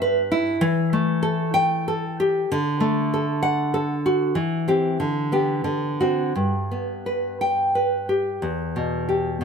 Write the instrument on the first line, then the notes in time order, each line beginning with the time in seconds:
nylon-string guitar
Already playing: G2 E5
0.02 B4
0.32 E4
0.61 E3
0.93 A3
1.23 A4
1.54 G5
1.88 A4
2.20 G4
2.52 D3
2.80 A3
3.14 A4
3.43 F#5
3.74 A4
4.06 F#4
4.35 E3
4.68 C4 G4
5.00 D3
5.32 B3 G4
5.64 D3
6.01 C4 F#4
6.35 G2
6.71 B3
7.06 B4
7.41 G5
7.75 B4
8.09 G4
8.42 E2
8.76 B2
9.09 G4
9.41 B2